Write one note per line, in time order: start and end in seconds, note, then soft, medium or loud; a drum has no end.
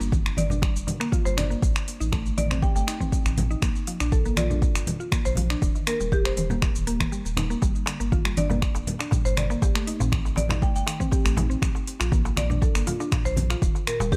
0.00 0.30 G1 medium
0.00 0.11 A#3 medium
0.00 shaker loud
0.12 kick loud
0.12 high conga loud
0.12 shaker medium
0.26 finger snap medium
0.26 shaker medium
0.37 0.68 G1 medium
0.37 0.55 D5 medium
0.37 open hi-hat medium
0.37 mid tom medium
0.37 high conga loud
0.37 shaker medium
0.50 0.61 D4 medium
0.50 low conga medium
0.50 shaker medium
0.62 0.74 G3 medium
0.62 finger snap medium
0.62 kick loud
0.62 shaker soft
0.76 0.83 F1 loud
0.76 shaker loud
0.87 1.00 D3 medium
0.87 open hi-hat medium
0.87 mid tom medium
0.87 low conga medium
0.87 shaker medium
1.00 1.11 A#3 loud
1.00 finger snap medium
1.00 shaker medium
1.12 1.24 F4 medium
1.12 kick loud
1.12 high conga medium
1.12 shaker loud
1.25 1.56 G1 loud
1.25 1.36 G3 medium
1.25 1.35 C5 medium
1.25 shaker medium
1.37 1.49 D4 medium
1.37 1.55 D5 medium
1.37 finger snap medium
1.37 open hi-hat medium
1.37 high conga medium
1.37 low conga loud
1.37 shaker medium
1.50 1.61 A#3 medium
1.50 shaker medium
1.62 1.71 A1 loud
1.62 kick loud
1.62 shaker medium
1.76 finger snap medium
1.76 shaker soft
1.88 open hi-hat medium
1.88 shaker medium
2.00 2.31 A1 medium
2.00 2.11 D#4 medium
2.00 shaker medium
2.12 2.24 A3 medium
2.12 finger snap medium
2.12 kick loud
2.12 high conga medium
2.12 shaker medium
2.26 shaker soft
2.37 2.68 A1 medium
2.37 2.50 D#3 medium
2.37 2.55 D5 loud
2.37 open hi-hat medium
2.37 mid tom loud
2.37 high conga loud
2.37 shaker medium
2.51 2.61 C4 loud
2.51 finger snap medium
2.51 low conga medium
2.51 shaker medium
2.62 2.74 G4 medium
2.62 2.71 G5 medium
2.62 kick loud
2.62 shaker soft
2.75 2.83 G1 medium
2.75 2.86 A3 medium
2.75 2.83 G5 medium
2.75 shaker medium
2.87 2.99 D#4 medium
2.87 finger snap medium
2.87 open hi-hat medium
2.87 shaker medium
3.00 3.11 C4 medium
3.00 kick medium
3.00 mid tom medium
3.00 shaker medium
3.12 kick loud
3.12 shaker medium
3.25 3.55 A1 loud
3.25 finger snap medium
3.25 shaker medium
3.37 open hi-hat medium
3.37 high conga medium
3.37 low conga loud
3.37 shaker medium
3.51 3.61 D#4 medium
3.51 shaker medium
3.62 3.71 A#1 loud
3.62 3.74 A#3 medium
3.62 finger snap medium
3.62 kick loud
3.62 shaker medium
3.76 shaker soft
3.87 4.00 F3 medium
3.87 open hi-hat loud
3.87 shaker medium
4.00 4.30 A#1 medium
4.00 4.11 D4 loud
4.00 finger snap medium
4.00 shaker medium
4.12 4.24 A4 medium
4.12 kick loud
4.12 high conga medium
4.12 shaker medium
4.25 4.36 A#3 medium
4.25 shaker medium
4.36 4.68 A#1 medium
4.36 4.49 F4 medium
4.36 4.55 D5 loud
4.36 finger snap medium
4.36 open hi-hat medium
4.36 mid tom loud
4.36 high conga loud
4.36 shaker medium
4.50 4.61 D4 medium
4.50 low conga medium
4.50 shaker medium
4.62 kick loud
4.62 high conga medium
4.62 shaker soft
4.75 4.83 G1 loud
4.75 finger snap medium
4.75 shaker medium
4.87 open hi-hat medium
4.87 mid tom medium
4.87 low conga medium
4.87 shaker medium
5.00 5.11 F4 medium
5.00 shaker medium
5.11 5.24 A#3 medium
5.11 finger snap medium
5.11 kick loud
5.11 high conga medium
5.11 shaker medium
5.25 5.56 A#1 loud
5.25 5.35 C5 loud
5.25 shaker medium
5.36 5.50 F3 medium
5.36 open hi-hat medium
5.36 high conga medium
5.36 low conga loud
5.36 shaker soft
5.50 5.61 D4 loud
5.50 finger snap medium
5.50 shaker soft
5.62 5.70 D#1 loud
5.62 5.74 D4 medium
5.62 kick loud
5.62 high conga medium
5.62 shaker medium
5.75 5.86 D#3 medium
5.75 shaker medium
5.87 5.99 A#3 medium
5.87 6.10 A#4 medium
5.87 finger snap loud
5.87 open hi-hat loud
5.87 shaker medium
6.00 6.30 D#1 medium
6.00 6.11 G3 medium
6.00 shaker loud
6.12 6.23 G4 loud
6.12 kick loud
6.12 high conga medium
6.12 shaker medium
6.25 6.33 C5 medium
6.25 finger snap medium
6.25 shaker medium
6.37 6.68 D#1 medium
6.37 6.46 C5 medium
6.37 open hi-hat medium
6.37 mid tom medium
6.37 high conga loud
6.37 shaker medium
6.50 6.61 A#3 medium
6.50 low conga loud
6.50 shaker medium
6.62 6.74 D#3 medium
6.62 finger snap medium
6.62 kick loud
6.62 mid tom medium
6.62 shaker medium
6.75 7.05 D#1 medium
6.75 shaker medium
6.87 6.99 A#3 loud
6.87 open hi-hat loud
6.87 shaker medium
7.00 7.07 A#3 medium
7.00 finger snap medium
7.00 kick medium
7.00 mid tom medium
7.00 shaker medium
7.12 7.24 G3 medium
7.12 shaker medium
7.25 7.55 D#1 loud
7.25 shaker medium
7.37 7.44 D#4 medium
7.37 finger snap loud
7.37 open hi-hat medium
7.37 high conga medium
7.37 low conga loud
7.37 shaker medium
7.50 7.61 A#3 medium
7.50 shaker soft
7.62 7.71 G1 loud
7.62 7.74 G3 medium
7.62 kick loud
7.62 darbuka tek medium
7.62 shaker medium
7.76 shaker medium
7.86 8.00 D3 medium
7.86 finger snap loud
7.86 open hi-hat medium
7.86 darbuka tek loud
7.86 shaker medium
8.00 8.30 G1 medium
8.00 8.11 A#3 medium
8.00 shaker loud
8.12 8.24 F4 medium
8.12 kick loud
8.12 high conga medium
8.12 shaker medium
8.25 8.36 G3 medium
8.25 finger snap medium
8.25 darbuka tek medium
8.25 shaker medium
8.37 8.68 G1 medium
8.37 8.49 D4 medium
8.37 8.55 D5 loud
8.37 open hi-hat medium
8.37 mid tom medium
8.37 high conga loud
8.37 shaker medium
8.50 8.61 A#3 medium
8.50 darbuka tek medium
8.50 low conga loud
8.50 shaker medium
8.62 finger snap medium
8.62 kick loud
8.62 shaker soft
8.75 8.83 F1 loud
8.75 darbuka tek medium
8.75 shaker loud
8.87 open hi-hat loud
8.87 mid tom medium
8.87 low conga loud
8.87 shaker medium
8.99 9.11 D4 medium
8.99 finger snap medium
8.99 darbuka ka medium
8.99 shaker medium
9.11 9.24 G3 medium
9.11 kick loud
9.11 darbuka tek medium
9.11 high conga medium
9.11 darbuka dum medium
9.11 shaker loud
9.25 9.55 G1 loud
9.25 9.35 C5 loud
9.25 shaker medium
9.37 9.50 D3 medium
9.37 9.55 D5 medium
9.37 finger snap loud
9.37 open hi-hat medium
9.37 high conga medium
9.37 darbuka tek medium
9.37 low conga loud
9.37 shaker medium
9.50 9.61 A#3 loud
9.50 darbuka ka medium
9.50 shaker medium
9.62 9.71 A1 loud
9.62 9.74 G4 medium
9.62 kick loud
9.62 darbuka tek loud
9.62 shaker medium
9.75 9.86 A3 medium
9.75 finger snap medium
9.75 shaker medium
9.87 9.99 D#4 medium
9.87 open hi-hat medium
9.87 shaker medium
10.00 10.30 A1 medium
10.00 10.11 C4 medium
10.00 darbuka tek medium
10.00 darbuka dum loud
10.00 shaker loud
10.12 finger snap loud
10.12 kick loud
10.12 high conga loud
10.12 shaker medium
10.25 darbuka tek medium
10.25 shaker medium
10.36 10.68 A1 medium
10.36 10.55 D5 loud
10.36 open hi-hat medium
10.36 mid tom medium
10.36 darbuka ka loud
10.36 high conga loud
10.36 shaker loud
10.49 10.61 D#4 medium
10.49 finger snap medium
10.49 darbuka tek loud
10.49 low conga loud
10.49 shaker medium
10.62 10.74 A3 medium
10.62 10.71 G5 medium
10.62 kick loud
10.62 shaker medium
10.76 10.83 G1 loud
10.76 10.83 G5 medium
10.76 shaker medium
10.87 11.00 D#3 medium
10.87 finger snap loud
10.87 open hi-hat loud
10.87 darbuka ka medium
10.87 darbuka tek medium
10.87 shaker medium
11.00 11.11 C4 loud
11.00 kick medium
11.00 mid tom medium
11.00 shaker medium
11.11 11.24 G4 medium
11.11 kick loud
11.11 darbuka tek medium
11.11 shaker loud
11.25 11.55 A1 loud
11.25 11.36 A3 medium
11.25 finger snap medium
11.25 shaker medium
11.37 11.49 D#4 medium
11.37 open hi-hat medium
11.37 darbuka tek medium
11.37 high conga medium
11.37 low conga loud
11.37 shaker medium
11.50 11.61 C4 medium
11.50 shaker medium
11.62 11.71 A#1 loud
11.62 finger snap medium
11.62 kick loud
11.62 shaker loud
11.75 darbuka tek medium
11.75 shaker medium
11.87 open hi-hat medium
11.87 shaker medium
12.00 12.30 A#1 medium
12.00 12.11 F4 medium
12.00 finger snap medium
12.00 darbuka tek medium
12.00 shaker loud
12.12 12.24 A#3 medium
12.12 kick loud
12.12 high conga loud
12.12 shaker medium
12.25 darbuka tek loud
12.25 shaker medium
12.36 12.68 A#1 medium
12.36 12.49 F3 medium
12.36 12.55 D5 medium
12.36 finger snap loud
12.36 open hi-hat medium
12.36 mid tom medium
12.36 high conga loud
12.36 shaker loud
12.50 12.61 D4 loud
12.50 low conga medium
12.50 shaker medium
12.62 12.74 A4 medium
12.62 kick loud
12.62 darbuka tek medium
12.62 high conga medium
12.62 shaker medium
12.75 12.83 G1 loud
12.75 12.86 A#3 medium
12.75 finger snap medium
12.75 shaker loud
12.87 12.99 F4 medium
12.87 open hi-hat medium
12.87 mid tom medium
12.87 darbuka tek medium
12.87 low conga medium
12.87 shaker medium
13.00 13.11 D4 medium
13.00 darbuka ka medium
13.00 shaker medium
13.11 finger snap loud
13.11 kick loud
13.11 high conga medium
13.11 darbuka tek medium
13.11 darbuka dum medium
13.11 shaker loud
13.25 13.55 A#1 loud
13.25 13.35 C5 loud
13.25 shaker medium
13.37 open hi-hat medium
13.37 high conga loud
13.37 low conga loud
13.37 shaker medium
13.50 13.61 F4 medium
13.50 finger snap medium
13.50 darbuka ka medium
13.50 darbuka tek medium
13.50 shaker medium
13.62 13.71 D#1 loud
13.62 13.74 D#3 medium
13.62 kick loud
13.62 shaker loud
13.75 darbuka tek medium
13.75 shaker medium
13.87 14.00 A#2 medium
13.87 14.10 A#4 medium
13.87 finger snap medium
13.87 open hi-hat medium
13.87 shaker medium
14.00 14.17 D#1 medium
14.00 14.11 G3 loud
14.00 darbuka tek loud
14.00 darbuka dum medium
14.00 shaker loud
14.12 14.17 D4 medium
14.12 14.17 G4 medium
14.12 kick loud
14.12 high conga loud
14.12 shaker medium